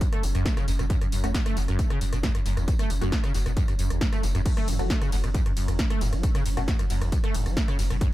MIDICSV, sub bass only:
0, 0, Header, 1, 2, 480
1, 0, Start_track
1, 0, Key_signature, 3, "minor"
1, 0, Tempo, 444444
1, 972, Time_signature, 4, 2, 24, 8
1, 8787, End_track
2, 0, Start_track
2, 0, Title_t, "Sub bass"
2, 0, Program_c, 0, 38
2, 251, Note_on_c, 0, 30, 101
2, 368, Note_off_c, 0, 30, 0
2, 374, Note_on_c, 0, 30, 84
2, 489, Note_off_c, 0, 30, 0
2, 731, Note_on_c, 0, 30, 102
2, 849, Note_off_c, 0, 30, 0
2, 855, Note_on_c, 0, 30, 87
2, 969, Note_off_c, 0, 30, 0
2, 1212, Note_on_c, 0, 30, 100
2, 1331, Note_off_c, 0, 30, 0
2, 1337, Note_on_c, 0, 30, 82
2, 1451, Note_off_c, 0, 30, 0
2, 1693, Note_on_c, 0, 30, 105
2, 1809, Note_off_c, 0, 30, 0
2, 1816, Note_on_c, 0, 30, 83
2, 1930, Note_off_c, 0, 30, 0
2, 2173, Note_on_c, 0, 30, 101
2, 2290, Note_off_c, 0, 30, 0
2, 2296, Note_on_c, 0, 30, 83
2, 2410, Note_off_c, 0, 30, 0
2, 2653, Note_on_c, 0, 30, 104
2, 2769, Note_off_c, 0, 30, 0
2, 2776, Note_on_c, 0, 30, 84
2, 2890, Note_off_c, 0, 30, 0
2, 3132, Note_on_c, 0, 30, 99
2, 3249, Note_off_c, 0, 30, 0
2, 3256, Note_on_c, 0, 30, 83
2, 3370, Note_off_c, 0, 30, 0
2, 3612, Note_on_c, 0, 30, 102
2, 3729, Note_off_c, 0, 30, 0
2, 3735, Note_on_c, 0, 30, 86
2, 3850, Note_off_c, 0, 30, 0
2, 4091, Note_on_c, 0, 30, 98
2, 4209, Note_off_c, 0, 30, 0
2, 4215, Note_on_c, 0, 30, 84
2, 4329, Note_off_c, 0, 30, 0
2, 4572, Note_on_c, 0, 30, 100
2, 4690, Note_off_c, 0, 30, 0
2, 4696, Note_on_c, 0, 30, 86
2, 4810, Note_off_c, 0, 30, 0
2, 5052, Note_on_c, 0, 30, 102
2, 5170, Note_off_c, 0, 30, 0
2, 5176, Note_on_c, 0, 30, 79
2, 5290, Note_off_c, 0, 30, 0
2, 5532, Note_on_c, 0, 30, 100
2, 5649, Note_off_c, 0, 30, 0
2, 5656, Note_on_c, 0, 30, 84
2, 5770, Note_off_c, 0, 30, 0
2, 6013, Note_on_c, 0, 30, 100
2, 6130, Note_off_c, 0, 30, 0
2, 6137, Note_on_c, 0, 30, 81
2, 6250, Note_off_c, 0, 30, 0
2, 6493, Note_on_c, 0, 30, 106
2, 6610, Note_off_c, 0, 30, 0
2, 6616, Note_on_c, 0, 30, 83
2, 6730, Note_off_c, 0, 30, 0
2, 6973, Note_on_c, 0, 30, 99
2, 7090, Note_off_c, 0, 30, 0
2, 7097, Note_on_c, 0, 30, 80
2, 7210, Note_off_c, 0, 30, 0
2, 7453, Note_on_c, 0, 30, 99
2, 7570, Note_off_c, 0, 30, 0
2, 7576, Note_on_c, 0, 30, 84
2, 7690, Note_off_c, 0, 30, 0
2, 7932, Note_on_c, 0, 30, 103
2, 8050, Note_off_c, 0, 30, 0
2, 8056, Note_on_c, 0, 30, 83
2, 8170, Note_off_c, 0, 30, 0
2, 8412, Note_on_c, 0, 30, 103
2, 8530, Note_off_c, 0, 30, 0
2, 8537, Note_on_c, 0, 30, 83
2, 8650, Note_off_c, 0, 30, 0
2, 8787, End_track
0, 0, End_of_file